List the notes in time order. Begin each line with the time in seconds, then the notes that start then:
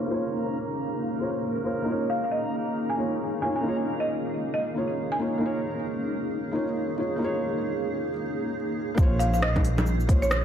Already playing: A#3 C#4 D#4 F4 G#4 A#4 C5 C#5 F5
0.06 A#3 F4
0.11 C5 C#5
1.19 A#3 F4 C5
1.23 C#5
1.63 A#3 F4 C5 C#5
1.82 A#3 D#4
1.87 F4 C#5
2.10 F5
2.24 F5
2.31 D#5
2.90 G#5
2.95 A#3 D#4 F4
2.99 C#5
3.40 A#3 D#4 F4 C#5 G#5
3.56 G#5
3.61 A#3 D#4
3.66 F4 C#5
4.00 D#5
4.54 D#5
4.74 A#3 D#4 F4 C#5
5.12 G#5
5.18 A#3 D#4 F4
5.22 C#5
5.38 A#3 D#4
5.43 F4 C#5
6.51 A#3 D#4 F4
6.55 C#5
6.96 A#3 D#4 F4 C#5
7.16 A#3 D#4
7.22 F4 C#5
8.95 A#1 A#3 F4, kick, shaker
9.00 C5 C#5
9.12 C#4
9.19 F5, open hi-hat
9.34 F5, shaker
9.42 D#5 F5, cross-stick
9.56 kick, low bongo
9.64 open hi-hat
9.78 low bongo, shaker
9.86 shaker
10.00 shaker
10.07 A#3 F4 C5 C#5, kick, open hi-hat
10.22 C#5, shaker
10.31 cross-stick, shaker